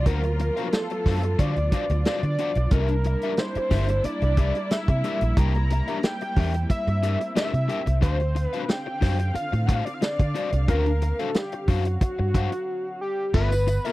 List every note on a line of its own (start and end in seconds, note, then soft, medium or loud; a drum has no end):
0.00 2.68 F3 medium
0.00 2.68 F#3 medium
0.00 2.68 F4 loud
0.06 0.49 D2 loud
0.06 2.69 B3 medium
0.06 0.20 D4 loud
0.06 0.20 F#4 loud
0.06 0.74 A#4 medium
0.06 0.20 C5 loud
0.06 0.21 F#5 loud
0.06 kick loud
0.06 closed hi-hat medium
0.23 muted overdriven electric guitar stroke soft
0.23 closed hi-hat soft
0.39 muted overdriven electric guitar stroke soft
0.39 closed hi-hat medium
0.57 0.67 D4 soft
0.57 0.67 F#4 medium
0.57 0.67 C5 medium
0.57 0.66 F5 medium
0.57 closed hi-hat soft
0.72 1.41 A4 loud
0.72 muted overdriven electric guitar stroke soft
0.72 snare loud
0.72 closed hi-hat medium
0.90 muted overdriven electric guitar stroke soft
0.90 closed hi-hat soft
1.06 1.34 F#2 medium
1.06 1.19 D4 medium
1.06 1.20 F#4 medium
1.06 1.20 C5 medium
1.06 1.20 F5 medium
1.06 kick medium
1.06 snare soft
1.06 open hi-hat medium
1.23 muted overdriven electric guitar stroke medium
1.23 closed hi-hat soft
1.39 1.54 D3 medium
1.39 1.52 D4 medium
1.39 1.53 F#4 medium
1.39 1.53 C5 medium
1.39 2.06 D5 loud
1.39 1.54 F5 medium
1.39 kick loud
1.39 closed hi-hat medium
1.56 1.70 D2 medium
1.56 muted overdriven electric guitar stroke soft
1.56 closed hi-hat soft
1.72 1.83 D4 medium
1.72 1.83 F#4 medium
1.72 1.84 C5 medium
1.72 1.84 F5 medium
1.72 kick loud
1.72 closed hi-hat medium
1.90 2.03 D2 medium
1.90 muted overdriven electric guitar stroke medium
1.90 closed hi-hat soft
2.05 2.19 D4 medium
2.05 2.20 F#4 medium
2.05 2.20 C5 medium
2.05 2.74 D5 loud
2.05 2.20 F5 medium
2.05 snare medium
2.05 closed hi-hat medium
2.23 2.36 D3 medium
2.23 muted overdriven electric guitar stroke medium
2.23 closed hi-hat soft
2.38 2.49 D4 medium
2.38 2.50 F#4 medium
2.38 2.50 C5 medium
2.38 2.50 F#5 medium
2.38 closed hi-hat medium
2.55 2.69 B1 medium
2.55 muted overdriven electric guitar stroke soft
2.55 closed hi-hat soft
2.71 3.14 C2 loud
2.71 7.98 G3 medium
2.71 7.98 A#3 medium
2.71 5.34 D4 medium
2.71 2.93 D4 medium
2.71 7.98 E4 medium
2.71 2.90 G4 medium
2.71 3.39 A#4 medium
2.71 2.89 A#4 loud
2.71 2.88 E5 loud
2.71 kick loud
2.71 closed hi-hat medium
2.88 muted overdriven electric guitar stroke medium
2.88 closed hi-hat soft
3.04 muted overdriven electric guitar stroke soft
3.04 closed hi-hat medium
3.22 3.33 D4 medium
3.22 3.33 G4 medium
3.22 3.33 A#4 medium
3.22 3.32 E5 medium
3.22 closed hi-hat soft
3.37 4.06 C5 loud
3.37 muted overdriven electric guitar stroke soft
3.37 snare medium
3.37 closed hi-hat medium
3.55 muted fingered electric bass stroke soft
3.55 muted overdriven electric guitar stroke soft
3.55 closed hi-hat soft
3.70 3.99 G1 medium
3.70 3.84 D4 medium
3.70 3.85 G4 medium
3.70 3.85 A#4 medium
3.70 3.85 E5 loud
3.70 kick medium
3.70 snare soft
3.70 open hi-hat medium
3.88 muted overdriven electric guitar stroke soft
3.88 closed hi-hat soft
4.04 4.73 D5 loud
4.04 muted overdriven electric guitar stroke soft
4.04 muted fingered electric bass stroke soft
4.04 closed hi-hat medium
4.22 4.50 C2 medium
4.22 muted overdriven electric guitar stroke soft
4.22 closed hi-hat soft
4.37 4.51 D4 medium
4.37 4.52 G4 loud
4.37 4.52 A#4 loud
4.37 4.52 E5 loud
4.37 kick medium
4.37 closed hi-hat medium
4.55 muted overdriven electric guitar stroke soft
4.55 closed hi-hat soft
4.71 5.39 E5 loud
4.71 muted overdriven electric guitar stroke soft
4.71 snare medium
4.71 closed hi-hat medium
4.88 5.01 C3 medium
4.88 muted overdriven electric guitar stroke soft
4.88 kick loud
4.88 closed hi-hat soft
5.04 5.17 D4 medium
5.04 5.18 G4 medium
5.04 5.18 A#4 medium
5.04 5.18 E5 medium
5.04 closed hi-hat medium
5.21 5.35 A#1 medium
5.21 muted overdriven electric guitar stroke soft
5.21 closed hi-hat medium
5.37 5.80 C2 loud
5.37 13.30 C4 medium
5.37 5.51 D4 medium
5.37 5.51 G4 medium
5.37 5.52 A#4 loud
5.37 5.52 G5 loud
5.37 6.05 A#5 loud
5.37 kick loud
5.37 closed hi-hat medium
5.54 muted overdriven electric guitar stroke soft
5.54 closed hi-hat soft
5.70 muted overdriven electric guitar stroke soft
5.70 closed hi-hat medium
5.88 5.98 D4 soft
5.88 5.98 G4 medium
5.88 5.97 A#4 medium
5.88 5.97 E5 medium
5.88 closed hi-hat soft
6.03 6.69 G5 loud
6.03 muted overdriven electric guitar stroke soft
6.03 snare loud
6.03 closed hi-hat medium
6.21 muted overdriven electric guitar stroke soft
6.21 closed hi-hat soft
6.36 6.65 E2 loud
6.36 6.50 D4 medium
6.36 6.50 G4 medium
6.36 6.51 A#4 medium
6.36 6.51 E5 medium
6.36 kick medium
6.36 open hi-hat medium
6.54 muted overdriven electric guitar stroke soft
6.54 closed hi-hat medium
6.70 7.32 E5 loud
6.70 muted overdriven electric guitar stroke soft
6.70 muted fingered electric bass stroke soft
6.70 kick medium
6.70 closed hi-hat medium
6.87 7.15 G2 medium
6.87 muted overdriven electric guitar stroke medium
6.87 closed hi-hat soft
7.03 7.16 D4 medium
7.03 7.17 G4 medium
7.03 7.17 A#4 loud
7.03 7.17 E5 medium
7.03 closed hi-hat medium
7.21 muted overdriven electric guitar stroke soft
7.21 closed hi-hat soft
7.36 7.49 D4 medium
7.36 7.50 G4 medium
7.36 7.50 A#4 medium
7.36 7.99 E5 loud
7.36 7.50 E5 loud
7.36 snare loud
7.36 closed hi-hat medium
7.53 7.67 C3 medium
7.53 muted overdriven electric guitar stroke soft
7.53 closed hi-hat soft
7.68 7.79 D4 medium
7.68 7.80 G4 medium
7.68 7.80 A#4 medium
7.68 7.80 G5 medium
7.68 closed hi-hat medium
7.86 8.03 C2 medium
7.86 muted overdriven electric guitar stroke medium
7.86 closed hi-hat medium
8.01 8.46 D2 medium
8.01 13.30 D3 medium
8.01 8.15 D4 loud
8.01 8.16 F#4 loud
8.01 8.46 C5 medium
8.01 8.16 C5 loud
8.01 13.30 F5 medium
8.01 8.16 F5 loud
8.01 kick loud
8.01 closed hi-hat medium
8.20 muted overdriven electric guitar stroke soft
8.20 closed hi-hat soft
8.35 muted overdriven electric guitar stroke soft
8.35 closed hi-hat medium
8.46 8.71 B4 medium
8.53 8.63 D4 soft
8.53 8.63 F#4 medium
8.53 8.63 C5 medium
8.53 8.62 F5 medium
8.53 closed hi-hat soft
8.69 9.37 G5 loud
8.69 muted overdriven electric guitar stroke soft
8.69 snare loud
8.69 closed hi-hat medium
8.86 muted overdriven electric guitar stroke medium
9.01 9.30 F#2 medium
9.01 9.15 D4 medium
9.01 9.16 F#4 medium
9.01 9.16 C5 medium
9.01 9.16 F5 medium
9.01 kick medium
9.01 snare soft
9.01 open hi-hat medium
9.19 muted overdriven electric guitar stroke soft
9.19 closed hi-hat medium
9.34 9.67 F5 loud
9.34 muted overdriven electric guitar stroke soft
9.34 muted fingered electric bass stroke soft
9.34 closed hi-hat medium
9.52 9.81 A2 medium
9.52 muted overdriven electric guitar stroke soft
9.52 closed hi-hat soft
9.66 9.82 D4 medium
9.66 9.82 F#4 medium
9.66 9.82 C5 loud
9.66 9.83 F5 loud
9.66 9.77 F#5 medium
9.66 kick medium
9.66 closed hi-hat medium
9.75 9.86 F5 medium
9.85 9.96 D5 medium
9.85 muted overdriven electric guitar stroke soft
9.85 closed hi-hat soft
9.94 10.03 F5 medium
10.01 10.68 D5 loud
10.01 muted overdriven electric guitar stroke soft
10.01 snare loud
10.01 closed hi-hat medium
10.19 10.33 D3 medium
10.19 muted overdriven electric guitar stroke soft
10.19 kick loud
10.19 closed hi-hat soft
10.35 10.48 D4 medium
10.35 10.49 F#4 loud
10.35 10.49 C5 medium
10.35 10.49 F5 medium
10.35 closed hi-hat medium
10.52 10.68 C2 medium
10.52 muted overdriven electric guitar stroke soft
10.52 closed hi-hat soft
10.68 11.11 D2 loud
10.68 10.89 D4 medium
10.68 10.86 F#4 loud
10.68 11.21 A#4 medium
10.68 10.86 C5 loud
10.68 10.86 F#5 loud
10.68 kick loud
10.68 closed hi-hat medium
10.86 muted overdriven electric guitar stroke soft
10.86 closed hi-hat soft
11.02 muted overdriven electric guitar stroke soft
11.02 closed hi-hat medium
11.19 11.29 D4 soft
11.19 11.29 F#4 medium
11.19 11.37 A4 medium
11.19 11.29 C5 medium
11.19 11.29 F5 medium
11.19 closed hi-hat soft
11.34 11.62 G4 medium
11.34 muted overdriven electric guitar stroke soft
11.34 snare medium
11.34 closed hi-hat medium
11.52 muted overdriven electric guitar stroke soft
11.52 closed hi-hat soft
11.62 11.70 G4 medium
11.68 11.96 F#2 medium
11.68 11.81 D4 medium
11.68 13.01 F#4 loud
11.68 11.82 F#4 medium
11.68 11.82 C5 medium
11.68 11.82 F5 loud
11.68 kick medium
11.68 open hi-hat medium
11.85 muted overdriven electric guitar stroke soft
11.85 closed hi-hat medium
12.01 muted overdriven electric guitar stroke soft
12.01 kick medium
12.01 closed hi-hat medium
12.19 12.47 G2 medium
12.19 muted overdriven electric guitar stroke soft
12.34 12.48 D4 medium
12.34 12.48 F#4 medium
12.34 12.49 C5 medium
12.34 12.49 F5 medium
12.34 kick loud
12.34 closed hi-hat medium
12.52 muted overdriven electric guitar stroke soft
12.52 closed hi-hat soft
13.01 13.32 G4 medium
13.34 13.77 G1 loud
13.34 13.47 B3 medium
13.34 13.48 F4 loud
13.34 13.48 A4 medium
13.34 13.87 B4 loud
13.34 13.48 E5 loud
13.34 kick loud
13.34 crash loud
13.52 muted overdriven electric guitar stroke medium
13.52 closed hi-hat soft
13.52 tambourine medium
13.67 muted overdriven electric guitar stroke soft
13.67 closed hi-hat medium
13.67 tambourine medium
13.85 13.92 B3 medium
13.85 13.92 F4 medium
13.85 13.92 A4 medium
13.85 13.92 A#4 loud
13.85 13.92 E5 medium
13.85 closed hi-hat soft
13.85 tambourine soft